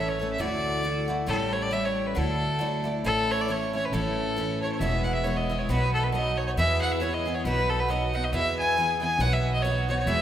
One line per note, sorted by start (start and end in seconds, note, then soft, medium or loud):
0.00 0.38 A1 medium
0.00 0.20 E3 medium
0.00 0.21 A3 medium
0.00 0.20 C#4 medium
0.00 0.18 A4 medium
0.08 0.30 C#5 medium
0.19 0.38 A3 medium
0.19 0.40 C#4 medium
0.19 0.39 A4 medium
0.32 0.42 E5 medium
0.38 1.26 D2 medium
0.38 0.81 D3 medium
0.38 0.83 A3 medium
0.38 0.84 E4 medium
0.38 0.84 F#4 medium
0.38 1.09 D5 loud
0.83 1.08 D3 medium
0.83 1.08 A3 medium
0.83 1.08 E4 medium
0.83 1.07 F#4 medium
1.08 1.26 A3 medium
1.08 1.27 E4 medium
1.08 1.28 F#4 medium
1.26 2.14 A1 medium
1.26 1.71 A2 medium
1.26 1.70 G3 medium
1.26 1.72 A3 medium
1.26 1.72 C#4 medium
1.26 1.73 E4 medium
1.26 1.54 A4 loud
1.53 1.64 C#5 medium
1.62 1.74 D5 loud
1.71 2.15 G3 medium
1.71 2.16 A3 medium
1.71 2.16 C#4 medium
1.71 2.16 E4 medium
1.71 1.86 E5 loud
1.85 2.08 C#5 medium
2.06 2.19 B4 medium
2.15 3.02 D2 medium
2.15 2.60 D3 medium
2.15 2.57 F#3 medium
2.15 2.60 A3 medium
2.15 2.60 D4 medium
2.15 2.61 E4 medium
2.15 2.86 A4 loud
2.59 2.84 F#3 medium
2.59 2.85 A3 medium
2.59 2.84 D4 medium
2.59 2.83 E4 medium
2.84 3.05 A3 medium
2.84 3.04 D4 medium
2.84 3.04 E4 medium
3.04 3.90 A1 medium
3.04 3.48 A2 medium
3.04 3.48 E3 medium
3.04 3.48 A3 medium
3.04 3.49 C#4 medium
3.04 3.50 E4 medium
3.04 3.33 A4 loud
3.31 3.42 C#5 loud
3.41 3.53 D5 loud
3.48 3.73 E3 medium
3.48 3.73 A3 medium
3.48 3.74 C#4 medium
3.48 3.72 E4 medium
3.48 3.75 C#5 loud
3.73 3.92 A3 soft
3.73 3.93 C#4 medium
3.73 3.92 E4 medium
3.73 3.87 C#5 loud
3.85 3.95 B4 medium
3.92 4.78 A1 medium
3.92 4.36 A2 medium
3.92 4.35 E3 medium
3.92 4.36 A3 medium
3.92 4.37 C#4 medium
3.92 4.37 E4 medium
3.92 4.61 A4 loud
4.36 4.80 E3 medium
4.36 4.81 A3 medium
4.36 4.81 C#4 medium
4.36 4.81 E4 medium
4.62 4.71 C#5 medium
4.71 4.81 C#5 medium
4.80 5.66 E1 medium
4.80 5.24 E2 medium
4.80 5.24 B2 medium
4.80 5.23 E3 medium
4.80 5.24 G#3 medium
4.80 5.26 B3 medium
4.80 5.25 E4 medium
4.80 5.06 E5 loud
5.04 5.13 F#5 medium
5.14 5.25 E5 medium
5.24 5.49 E3 medium
5.24 5.49 G#3 medium
5.24 5.50 B3 medium
5.24 5.48 E4 medium
5.24 5.37 C#5 medium
5.36 5.60 D#5 medium
5.50 5.69 E3 soft
5.50 5.69 G#3 medium
5.50 5.69 B3 medium
5.50 5.68 E4 medium
5.59 5.70 C#5 medium
5.68 6.54 B1 medium
5.68 6.12 B2 medium
5.68 6.11 F#3 medium
5.68 6.13 B3 medium
5.68 6.13 D#4 medium
5.68 6.13 F#4 medium
5.68 5.93 B4 loud
5.94 6.05 A4 medium
6.04 6.13 B4 medium
6.12 6.56 F#3 medium
6.12 6.58 B3 medium
6.12 6.57 D#4 medium
6.12 6.58 F#4 medium
6.12 6.39 D#5 loud
6.37 6.46 C#5 loud
6.47 6.51 C#5 medium
6.57 7.42 E2 medium
6.57 7.01 E2 medium
6.57 7.01 B2 medium
6.57 6.99 E3 medium
6.57 7.01 B3 medium
6.57 7.01 E4 medium
6.57 7.01 G#4 medium
6.57 6.79 E5 loud
6.81 6.93 F#5 loud
6.92 7.03 E5 medium
7.00 7.25 E3 medium
7.00 7.25 B3 medium
7.00 7.25 E4 medium
7.00 7.24 G#4 medium
7.00 7.15 C#5 loud
7.13 7.36 D#5 medium
7.25 7.45 E3 medium
7.25 7.45 B3 medium
7.25 7.45 E4 medium
7.25 7.44 G#4 medium
7.34 7.44 C#5 medium
7.45 8.30 B1 medium
7.45 7.88 B2 medium
7.45 7.87 F#3 medium
7.45 7.89 B3 medium
7.45 7.89 D#4 medium
7.45 7.89 F#4 medium
7.45 7.71 B4 loud
7.69 7.81 A4 loud
7.80 7.91 B4 loud
7.88 8.13 F#3 medium
7.88 8.13 B3 medium
7.88 8.14 D#4 medium
7.88 8.12 F#4 medium
7.88 8.16 D#5 medium
8.14 8.33 B3 soft
8.14 8.33 D#4 medium
8.14 8.32 F#4 medium
8.14 8.25 F#5 loud
8.24 8.32 D#5 medium
8.32 9.18 E2 medium
8.32 8.76 E2 medium
8.32 8.76 B2 medium
8.32 8.76 E3 medium
8.32 8.78 B3 medium
8.32 8.77 E4 medium
8.32 8.77 G#4 medium
8.32 8.55 E5 loud
8.58 8.98 G#5 loud
8.77 9.01 E3 medium
8.77 9.01 B3 medium
8.77 9.00 E4 medium
8.77 8.99 G#4 medium
9.00 9.20 E3 soft
9.00 9.19 B3 medium
9.00 9.20 E4 medium
9.00 9.19 G#4 medium
9.00 9.22 G#5 loud
9.18 10.05 B1 medium
9.18 9.63 B2 medium
9.18 9.63 F#3 medium
9.18 9.64 B3 medium
9.18 9.64 D#4 medium
9.18 9.64 F#4 medium
9.18 9.34 F#5 loud
9.33 9.53 E5 loud
9.54 9.64 D#5 loud
9.62 9.88 F#3 medium
9.62 9.89 B3 medium
9.62 9.89 D#4 medium
9.62 9.87 C#5 loud
9.67 9.87 F#4 medium
9.89 10.07 B3 soft
9.89 10.08 D#4 medium
9.89 10.07 F#4 medium
9.89 9.97 C#5 medium
9.99 10.08 C#5 medium
10.06 10.22 E2 medium
10.06 10.22 B2 medium
10.06 10.22 E3 medium
10.06 10.22 G#3 medium
10.06 10.22 B3 medium
10.06 10.22 G#4 medium
10.06 10.22 E5 loud